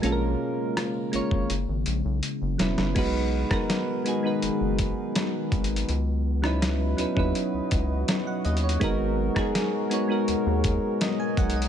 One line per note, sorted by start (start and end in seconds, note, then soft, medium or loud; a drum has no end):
0.00 0.36 A#1 loud
0.00 2.93 C#3 medium
0.00 1.46 G#3 medium
0.00 0.99 G#3 loud
0.00 1.00 A#3 medium
0.00 1.48 A#3 medium
0.00 1.00 C#4 medium
0.00 1.48 F4 medium
0.00 closed hi-hat soft
0.05 1.00 F4 medium
0.05 0.11 A4 medium
0.12 1.04 A#4 loud
0.77 cross-stick loud
0.77 closed hi-hat medium
1.12 1.21 G#1 soft
1.12 1.49 G#3 medium
1.12 1.49 A#3 medium
1.12 1.50 C#4 medium
1.12 1.50 F4 medium
1.12 1.51 C#5 medium
1.12 closed hi-hat medium
1.31 1.48 G#1 medium
1.31 kick medium
1.50 1.66 F#1 loud
1.50 2.94 F#3 medium
1.50 2.94 B3 medium
1.50 2.95 E4 medium
1.50 closed hi-hat medium
1.68 1.84 G#1 medium
1.86 2.03 A#1 medium
1.86 closed hi-hat medium
2.05 2.21 B1 medium
2.23 closed hi-hat medium
2.42 2.58 F#1 medium
2.58 2.76 E1 medium
2.58 2.91 F#3 medium
2.58 2.91 B3 medium
2.58 2.92 C#4 medium
2.58 2.92 E4 medium
2.58 2.93 B4 medium
2.58 snare loud
2.58 closed hi-hat medium
2.78 2.94 F#1 medium
2.78 snare medium
2.95 3.44 B1 loud
2.95 5.86 D#3 medium
2.95 3.44 G#3 loud
2.95 5.86 G#3 medium
2.95 3.44 B3 medium
2.95 8.77 B3 medium
2.95 3.44 D#4 medium
2.95 5.86 F#4 medium
2.95 3.45 F#4 loud
2.95 3.46 B4 loud
2.95 kick loud
2.95 closed hi-hat soft
2.95 crash medium
3.50 3.98 G#3 medium
3.50 3.99 B3 medium
3.50 3.99 D#4 medium
3.50 4.00 F#4 medium
3.50 4.00 A#4 medium
3.50 kick medium
3.50 cross-stick loud
3.70 snare loud
3.70 closed hi-hat medium
4.04 4.21 G#3 medium
4.04 4.22 B3 medium
4.04 4.22 D#4 medium
4.04 4.23 F#4 medium
4.04 4.23 G#4 medium
4.04 closed hi-hat medium
4.23 5.52 G#3 medium
4.23 5.53 B3 medium
4.23 5.53 D#4 medium
4.23 5.54 F#4 medium
4.23 5.54 B4 medium
4.42 4.50 F#1 soft
4.42 closed hi-hat medium
4.61 4.93 F#1 medium
4.79 kick medium
4.79 closed hi-hat medium
5.15 snare loud
5.15 closed hi-hat medium
5.52 5.84 G#1 medium
5.52 kick medium
5.52 closed hi-hat soft
5.64 closed hi-hat medium
5.76 closed hi-hat medium
5.89 6.95 C#2 loud
5.89 8.78 F#3 medium
5.89 11.68 F#4 medium
5.89 8.78 D#5 medium
5.89 closed hi-hat medium
6.42 6.91 F#3 medium
6.42 6.92 C#4 medium
6.42 6.92 D#4 medium
6.42 6.92 E4 medium
6.42 6.93 B4 medium
6.42 cross-stick medium
6.62 snare loud
6.62 closed hi-hat medium
6.97 7.06 D#2 soft
6.97 7.14 F#3 medium
6.97 7.14 C#4 medium
6.97 7.15 D#4 medium
6.97 7.15 E4 medium
6.97 7.16 B4 medium
6.97 closed hi-hat medium
7.15 7.33 D#2 medium
7.15 7.64 F#3 medium
7.15 7.65 C#4 medium
7.15 7.65 D#4 medium
7.15 7.66 E4 medium
7.15 7.66 B4 medium
7.15 kick medium
7.35 closed hi-hat medium
7.54 7.61 C#2 soft
7.71 8.04 C#2 medium
7.71 kick medium
7.71 closed hi-hat medium
8.08 snare loud
8.08 closed hi-hat medium
8.27 8.44 F#5 medium
8.45 8.77 D#2 loud
8.45 8.62 D#5 medium
8.45 closed hi-hat soft
8.57 closed hi-hat medium
8.63 8.98 C#5 medium
8.69 closed hi-hat medium
8.80 9.30 G#1 loud
8.80 11.68 B2 medium
8.80 9.29 G#3 loud
8.80 11.68 G#3 medium
8.80 9.29 B3 loud
8.80 9.30 D#4 loud
8.80 9.30 F#4 loud
8.80 11.68 A#4 medium
8.80 9.31 A#4 loud
8.80 kick loud
8.80 closed hi-hat medium
9.35 9.84 G#3 medium
9.35 9.84 B3 medium
9.35 9.85 D#4 medium
9.35 9.85 F#4 medium
9.35 9.86 G#4 medium
9.35 kick medium
9.35 cross-stick medium
9.55 snare loud
9.55 closed hi-hat medium
9.90 10.06 G#3 medium
9.90 10.07 B3 medium
9.90 10.07 D#4 medium
9.90 10.08 F#4 medium
9.90 10.08 C#5 medium
9.90 closed hi-hat medium
10.08 11.37 G#3 medium
10.08 11.38 B3 medium
10.08 11.38 D#4 medium
10.08 11.39 F#4 medium
10.08 11.39 A#4 loud
10.28 10.35 D#2 soft
10.28 closed hi-hat medium
10.46 10.78 D#2 medium
10.64 kick medium
10.64 closed hi-hat medium
11.01 11.19 D#5 medium
11.01 snare loud
11.01 closed hi-hat medium
11.20 11.37 G#5 medium
11.37 11.68 B1 medium
11.37 11.55 F#5 medium
11.37 kick medium
11.37 closed hi-hat soft
11.50 closed hi-hat medium
11.56 11.68 D#5 medium
11.62 closed hi-hat medium